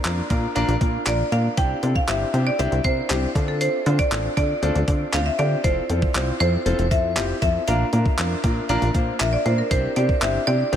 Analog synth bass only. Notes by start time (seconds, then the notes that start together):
0.05 F2
0.30 A#2
0.56 A#1
0.68 A#1
0.81 A#2
1.07 A#1
1.32 A#2
1.58 C2
1.83 C3
2.08 G1
2.34 C3
2.59 C2
2.72 C2
2.84 C3
3.10 C2
3.35 D3
3.86 D3
4.12 A1
4.37 D3
4.63 D2
4.75 D2
4.88 D3
5.14 D2
5.39 D3
5.64 F1
5.90 F2
6.15 C2
6.41 F2
6.66 F1
6.79 F1
6.91 F2
7.17 F1
7.42 F2
7.68 A#1
7.93 A#2
8.19 F2
8.44 A#2
8.69 A#1
8.82 A#1
8.95 A#2
9.20 A#1
9.46 A#2
9.71 C2
9.96 C3
10.22 G1
10.47 C3
10.73 C2